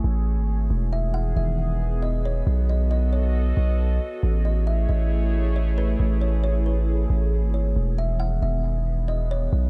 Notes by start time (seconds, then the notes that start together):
Already playing: A3 E4 G#4 C#5
0.04 A1
0.37 G#1
0.70 E1 D#3 E3 B3 G#4
0.93 E5
1.14 F#5
1.36 E1 E5
2.03 D#5
2.25 C#5
2.47 B1 F#4 A4 D#5
2.69 D#5
2.91 D#5
3.13 C#5
3.57 B1
4.23 A1 A3 E4 G#4 C#5
4.45 D#5
4.67 E5
4.89 A1 D#5
5.56 C#5
5.78 B4
6.00 A1
6.21 C#5
6.44 C#5
6.66 B4
7.10 A1
7.43 G#1
7.54 C#5
7.76 E1 D#3 E3 B3
7.98 E5
8.20 F#5
8.42 E1 E5
9.08 D#5
9.31 C#5
9.53 B1 F#4 A4 D#5